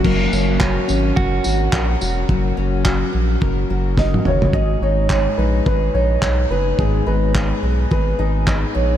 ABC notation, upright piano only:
X:1
M:4/4
L:1/8
Q:"Swing 16ths" 1/4=107
K:F#mix
V:1 name="Upright piano"
z8 | z6 d c | d c c B B c c B | G B3 B G d c |]